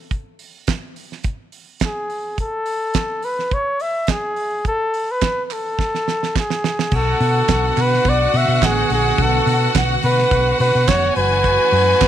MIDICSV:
0, 0, Header, 1, 6, 480
1, 0, Start_track
1, 0, Tempo, 566572
1, 97, Time_signature, 4, 2, 24, 8
1, 10233, End_track
2, 0, Start_track
2, 0, Title_t, "String section"
2, 0, Program_c, 0, 48
2, 5868, Note_on_c, 0, 66, 83
2, 5869, Note_on_c, 0, 78, 89
2, 9426, Note_off_c, 0, 66, 0
2, 9426, Note_off_c, 0, 78, 0
2, 9458, Note_on_c, 0, 66, 90
2, 9458, Note_on_c, 0, 80, 101
2, 10233, Note_off_c, 0, 66, 0
2, 10233, Note_off_c, 0, 80, 0
2, 10233, End_track
3, 0, Start_track
3, 0, Title_t, "Flugelhorn"
3, 0, Program_c, 1, 56
3, 1565, Note_on_c, 1, 68, 75
3, 2001, Note_off_c, 1, 68, 0
3, 2037, Note_on_c, 1, 69, 85
3, 2749, Note_on_c, 1, 71, 87
3, 2762, Note_off_c, 1, 69, 0
3, 2998, Note_on_c, 1, 73, 88
3, 3011, Note_off_c, 1, 71, 0
3, 3232, Note_on_c, 1, 76, 88
3, 3245, Note_off_c, 1, 73, 0
3, 3478, Note_on_c, 1, 68, 91
3, 3491, Note_off_c, 1, 76, 0
3, 3952, Note_off_c, 1, 68, 0
3, 3963, Note_on_c, 1, 69, 96
3, 4333, Note_on_c, 1, 71, 81
3, 4346, Note_off_c, 1, 69, 0
3, 4621, Note_off_c, 1, 71, 0
3, 4621, Note_on_c, 1, 71, 54
3, 4681, Note_on_c, 1, 69, 83
3, 4694, Note_off_c, 1, 71, 0
3, 5394, Note_off_c, 1, 69, 0
3, 5410, Note_on_c, 1, 68, 82
3, 5892, Note_on_c, 1, 69, 101
3, 5904, Note_off_c, 1, 68, 0
3, 6617, Note_on_c, 1, 71, 101
3, 6630, Note_off_c, 1, 69, 0
3, 6851, Note_on_c, 1, 74, 97
3, 6864, Note_off_c, 1, 71, 0
3, 7089, Note_on_c, 1, 76, 89
3, 7102, Note_off_c, 1, 74, 0
3, 7332, Note_on_c, 1, 68, 92
3, 7344, Note_off_c, 1, 76, 0
3, 7557, Note_off_c, 1, 68, 0
3, 7570, Note_on_c, 1, 68, 89
3, 7811, Note_on_c, 1, 69, 92
3, 7824, Note_off_c, 1, 68, 0
3, 8276, Note_off_c, 1, 69, 0
3, 8514, Note_on_c, 1, 71, 108
3, 8953, Note_off_c, 1, 71, 0
3, 8986, Note_on_c, 1, 71, 103
3, 9217, Note_on_c, 1, 73, 114
3, 9229, Note_off_c, 1, 71, 0
3, 9455, Note_off_c, 1, 73, 0
3, 9460, Note_on_c, 1, 71, 127
3, 10233, Note_off_c, 1, 71, 0
3, 10233, End_track
4, 0, Start_track
4, 0, Title_t, "String section"
4, 0, Program_c, 2, 48
4, 5862, Note_on_c, 2, 66, 83
4, 5864, Note_on_c, 2, 59, 83
4, 5865, Note_on_c, 2, 57, 69
4, 5868, Note_on_c, 2, 50, 78
4, 9424, Note_off_c, 2, 59, 0
4, 9426, Note_off_c, 2, 50, 0
4, 9466, Note_on_c, 2, 61, 82
4, 9468, Note_on_c, 2, 52, 85
4, 10233, Note_off_c, 2, 52, 0
4, 10233, Note_off_c, 2, 57, 0
4, 10233, Note_off_c, 2, 61, 0
4, 10233, Note_off_c, 2, 66, 0
4, 10233, End_track
5, 0, Start_track
5, 0, Title_t, "Fingered electric bass"
5, 0, Program_c, 3, 33
5, 5862, Note_on_c, 3, 35, 99
5, 6036, Note_off_c, 3, 35, 0
5, 6104, Note_on_c, 3, 47, 107
5, 6277, Note_off_c, 3, 47, 0
5, 6342, Note_on_c, 3, 35, 106
5, 6515, Note_off_c, 3, 35, 0
5, 6585, Note_on_c, 3, 47, 96
5, 6757, Note_off_c, 3, 47, 0
5, 6819, Note_on_c, 3, 35, 120
5, 6993, Note_off_c, 3, 35, 0
5, 7063, Note_on_c, 3, 47, 110
5, 7155, Note_off_c, 3, 47, 0
5, 7186, Note_on_c, 3, 47, 111
5, 7269, Note_off_c, 3, 47, 0
5, 7300, Note_on_c, 3, 33, 98
5, 7473, Note_off_c, 3, 33, 0
5, 7540, Note_on_c, 3, 34, 90
5, 7713, Note_off_c, 3, 34, 0
5, 7781, Note_on_c, 3, 35, 117
5, 7953, Note_off_c, 3, 35, 0
5, 8017, Note_on_c, 3, 47, 106
5, 8191, Note_off_c, 3, 47, 0
5, 8259, Note_on_c, 3, 35, 101
5, 8432, Note_off_c, 3, 35, 0
5, 8503, Note_on_c, 3, 47, 96
5, 8674, Note_off_c, 3, 47, 0
5, 8739, Note_on_c, 3, 35, 93
5, 8911, Note_off_c, 3, 35, 0
5, 8980, Note_on_c, 3, 47, 107
5, 9071, Note_off_c, 3, 47, 0
5, 9108, Note_on_c, 3, 47, 94
5, 9188, Note_off_c, 3, 47, 0
5, 9217, Note_on_c, 3, 29, 96
5, 9390, Note_off_c, 3, 29, 0
5, 9457, Note_on_c, 3, 30, 92
5, 9801, Note_off_c, 3, 30, 0
5, 9931, Note_on_c, 3, 42, 98
5, 10105, Note_off_c, 3, 42, 0
5, 10176, Note_on_c, 3, 30, 110
5, 10233, Note_off_c, 3, 30, 0
5, 10233, End_track
6, 0, Start_track
6, 0, Title_t, "Drums"
6, 91, Note_on_c, 9, 42, 46
6, 93, Note_on_c, 9, 36, 86
6, 176, Note_off_c, 9, 42, 0
6, 178, Note_off_c, 9, 36, 0
6, 331, Note_on_c, 9, 46, 53
6, 415, Note_off_c, 9, 46, 0
6, 568, Note_on_c, 9, 42, 67
6, 575, Note_on_c, 9, 36, 104
6, 577, Note_on_c, 9, 38, 104
6, 579, Note_on_c, 9, 39, 81
6, 653, Note_off_c, 9, 42, 0
6, 660, Note_off_c, 9, 36, 0
6, 661, Note_off_c, 9, 38, 0
6, 664, Note_off_c, 9, 39, 0
6, 814, Note_on_c, 9, 46, 55
6, 899, Note_off_c, 9, 46, 0
6, 949, Note_on_c, 9, 38, 31
6, 1034, Note_off_c, 9, 38, 0
6, 1047, Note_on_c, 9, 42, 55
6, 1054, Note_on_c, 9, 36, 99
6, 1132, Note_off_c, 9, 42, 0
6, 1139, Note_off_c, 9, 36, 0
6, 1290, Note_on_c, 9, 46, 52
6, 1374, Note_off_c, 9, 46, 0
6, 1523, Note_on_c, 9, 42, 66
6, 1535, Note_on_c, 9, 36, 98
6, 1535, Note_on_c, 9, 38, 105
6, 1543, Note_on_c, 9, 39, 86
6, 1608, Note_off_c, 9, 42, 0
6, 1619, Note_off_c, 9, 38, 0
6, 1620, Note_off_c, 9, 36, 0
6, 1627, Note_off_c, 9, 39, 0
6, 1777, Note_on_c, 9, 46, 48
6, 1862, Note_off_c, 9, 46, 0
6, 2015, Note_on_c, 9, 42, 55
6, 2016, Note_on_c, 9, 36, 77
6, 2099, Note_off_c, 9, 42, 0
6, 2101, Note_off_c, 9, 36, 0
6, 2251, Note_on_c, 9, 46, 57
6, 2336, Note_off_c, 9, 46, 0
6, 2489, Note_on_c, 9, 42, 66
6, 2497, Note_on_c, 9, 36, 110
6, 2497, Note_on_c, 9, 38, 109
6, 2503, Note_on_c, 9, 39, 90
6, 2574, Note_off_c, 9, 42, 0
6, 2582, Note_off_c, 9, 36, 0
6, 2582, Note_off_c, 9, 38, 0
6, 2588, Note_off_c, 9, 39, 0
6, 2732, Note_on_c, 9, 46, 60
6, 2817, Note_off_c, 9, 46, 0
6, 2871, Note_on_c, 9, 38, 33
6, 2956, Note_off_c, 9, 38, 0
6, 2977, Note_on_c, 9, 36, 103
6, 2978, Note_on_c, 9, 42, 61
6, 3062, Note_off_c, 9, 36, 0
6, 3062, Note_off_c, 9, 42, 0
6, 3216, Note_on_c, 9, 46, 56
6, 3301, Note_off_c, 9, 46, 0
6, 3447, Note_on_c, 9, 42, 66
6, 3458, Note_on_c, 9, 36, 99
6, 3459, Note_on_c, 9, 38, 104
6, 3464, Note_on_c, 9, 39, 91
6, 3532, Note_off_c, 9, 42, 0
6, 3543, Note_off_c, 9, 36, 0
6, 3543, Note_off_c, 9, 38, 0
6, 3548, Note_off_c, 9, 39, 0
6, 3696, Note_on_c, 9, 46, 51
6, 3781, Note_off_c, 9, 46, 0
6, 3936, Note_on_c, 9, 42, 49
6, 3938, Note_on_c, 9, 36, 92
6, 4021, Note_off_c, 9, 42, 0
6, 4023, Note_off_c, 9, 36, 0
6, 4183, Note_on_c, 9, 46, 52
6, 4268, Note_off_c, 9, 46, 0
6, 4416, Note_on_c, 9, 42, 72
6, 4421, Note_on_c, 9, 36, 110
6, 4424, Note_on_c, 9, 39, 93
6, 4425, Note_on_c, 9, 38, 113
6, 4501, Note_off_c, 9, 42, 0
6, 4506, Note_off_c, 9, 36, 0
6, 4509, Note_off_c, 9, 38, 0
6, 4509, Note_off_c, 9, 39, 0
6, 4661, Note_on_c, 9, 46, 57
6, 4666, Note_on_c, 9, 39, 67
6, 4746, Note_off_c, 9, 46, 0
6, 4751, Note_off_c, 9, 39, 0
6, 4902, Note_on_c, 9, 36, 96
6, 4909, Note_on_c, 9, 38, 48
6, 4987, Note_off_c, 9, 36, 0
6, 4994, Note_off_c, 9, 38, 0
6, 5037, Note_on_c, 9, 38, 44
6, 5122, Note_off_c, 9, 38, 0
6, 5149, Note_on_c, 9, 38, 61
6, 5234, Note_off_c, 9, 38, 0
6, 5278, Note_on_c, 9, 38, 54
6, 5363, Note_off_c, 9, 38, 0
6, 5384, Note_on_c, 9, 36, 104
6, 5389, Note_on_c, 9, 38, 74
6, 5391, Note_on_c, 9, 39, 82
6, 5469, Note_off_c, 9, 36, 0
6, 5474, Note_off_c, 9, 38, 0
6, 5476, Note_off_c, 9, 39, 0
6, 5510, Note_on_c, 9, 38, 68
6, 5595, Note_off_c, 9, 38, 0
6, 5628, Note_on_c, 9, 38, 87
6, 5712, Note_off_c, 9, 38, 0
6, 5754, Note_on_c, 9, 38, 85
6, 5838, Note_off_c, 9, 38, 0
6, 5858, Note_on_c, 9, 49, 91
6, 5862, Note_on_c, 9, 36, 99
6, 5943, Note_off_c, 9, 49, 0
6, 5947, Note_off_c, 9, 36, 0
6, 6102, Note_on_c, 9, 46, 59
6, 6187, Note_off_c, 9, 46, 0
6, 6338, Note_on_c, 9, 42, 81
6, 6343, Note_on_c, 9, 36, 127
6, 6346, Note_on_c, 9, 39, 92
6, 6347, Note_on_c, 9, 38, 124
6, 6423, Note_off_c, 9, 42, 0
6, 6428, Note_off_c, 9, 36, 0
6, 6431, Note_off_c, 9, 39, 0
6, 6432, Note_off_c, 9, 38, 0
6, 6576, Note_on_c, 9, 46, 70
6, 6588, Note_on_c, 9, 39, 79
6, 6660, Note_off_c, 9, 46, 0
6, 6672, Note_off_c, 9, 39, 0
6, 6719, Note_on_c, 9, 38, 34
6, 6804, Note_off_c, 9, 38, 0
6, 6816, Note_on_c, 9, 42, 62
6, 6821, Note_on_c, 9, 36, 127
6, 6901, Note_off_c, 9, 42, 0
6, 6906, Note_off_c, 9, 36, 0
6, 7063, Note_on_c, 9, 46, 70
6, 7148, Note_off_c, 9, 46, 0
6, 7298, Note_on_c, 9, 42, 79
6, 7303, Note_on_c, 9, 36, 116
6, 7309, Note_on_c, 9, 38, 121
6, 7315, Note_on_c, 9, 39, 108
6, 7383, Note_off_c, 9, 42, 0
6, 7387, Note_off_c, 9, 36, 0
6, 7394, Note_off_c, 9, 38, 0
6, 7400, Note_off_c, 9, 39, 0
6, 7541, Note_on_c, 9, 46, 59
6, 7626, Note_off_c, 9, 46, 0
6, 7780, Note_on_c, 9, 36, 113
6, 7780, Note_on_c, 9, 42, 61
6, 7865, Note_off_c, 9, 36, 0
6, 7865, Note_off_c, 9, 42, 0
6, 8024, Note_on_c, 9, 46, 69
6, 8109, Note_off_c, 9, 46, 0
6, 8258, Note_on_c, 9, 42, 75
6, 8261, Note_on_c, 9, 36, 127
6, 8264, Note_on_c, 9, 39, 111
6, 8266, Note_on_c, 9, 38, 127
6, 8342, Note_off_c, 9, 42, 0
6, 8345, Note_off_c, 9, 36, 0
6, 8349, Note_off_c, 9, 39, 0
6, 8351, Note_off_c, 9, 38, 0
6, 8493, Note_on_c, 9, 46, 70
6, 8577, Note_off_c, 9, 46, 0
6, 8629, Note_on_c, 9, 38, 38
6, 8714, Note_off_c, 9, 38, 0
6, 8736, Note_on_c, 9, 42, 66
6, 8737, Note_on_c, 9, 36, 121
6, 8821, Note_off_c, 9, 42, 0
6, 8822, Note_off_c, 9, 36, 0
6, 8979, Note_on_c, 9, 46, 70
6, 9064, Note_off_c, 9, 46, 0
6, 9213, Note_on_c, 9, 42, 81
6, 9218, Note_on_c, 9, 36, 118
6, 9220, Note_on_c, 9, 39, 105
6, 9224, Note_on_c, 9, 38, 117
6, 9298, Note_off_c, 9, 42, 0
6, 9303, Note_off_c, 9, 36, 0
6, 9305, Note_off_c, 9, 39, 0
6, 9309, Note_off_c, 9, 38, 0
6, 9455, Note_on_c, 9, 46, 57
6, 9540, Note_off_c, 9, 46, 0
6, 9693, Note_on_c, 9, 42, 53
6, 9694, Note_on_c, 9, 36, 99
6, 9778, Note_off_c, 9, 42, 0
6, 9779, Note_off_c, 9, 36, 0
6, 9936, Note_on_c, 9, 46, 70
6, 10021, Note_off_c, 9, 46, 0
6, 10174, Note_on_c, 9, 42, 85
6, 10176, Note_on_c, 9, 36, 127
6, 10178, Note_on_c, 9, 39, 110
6, 10183, Note_on_c, 9, 38, 127
6, 10233, Note_off_c, 9, 36, 0
6, 10233, Note_off_c, 9, 38, 0
6, 10233, Note_off_c, 9, 39, 0
6, 10233, Note_off_c, 9, 42, 0
6, 10233, End_track
0, 0, End_of_file